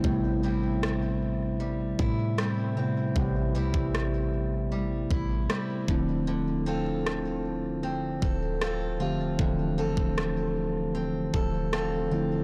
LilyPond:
<<
  \new Staff \with { instrumentName = "Steel-string acoustic guitar" } { \time 4/4 \key a \minor \tempo 4 = 77 <a, g c' e'>8 <g c' e'>4. g8 e'8 <g c' e'>8 c'8 | a,8 <g c' e'>4. g8 e'8 <g c' e'>8 d8 | d8 <c' f' a'>4. c'8 a'8 <c' f' a'>8 f'8 | d8 <c' f' a'>4. c'8 a'8 <c' f' a'>8 f'8 | }
  \new Staff \with { instrumentName = "Tine electric piano" } { \time 4/4 \key a \minor <c g a b e'>4 r2 r8 <c g a b e'>8 | <c g a b g'>4 r2 r8 <d e f a c' e'>8~ | <d e f a c' e'>4 r2 r8 <d f a c' g'>8 | <d e f a c' e'>4 r2 f''8 <d f a c' e' g''>8 | }
  \new Staff \with { instrumentName = "808-style bass" } { \clef bass \time 4/4 \key a \minor a,,2~ a,,8 a,4. | a,,8 c,16 a,,4.~ a,,16 a,,8 r8 d,,8~ | d,,2~ d,,8 d,,4 e,,16 d,,16 | d,,8 f,,16 d,,4.~ d,,16 d,,4. | }
  \new DrumStaff \with { instrumentName = "Drums" } \drummode { \time 4/4 bd4 ss4 r8 bd8 ss4 | bd8. bd16 ss4 r8 bd8 ss8 bd8 | r4 ss4 r8 bd8 ss4 | bd8. bd16 ss4 r8 bd8 ss4 | }
>>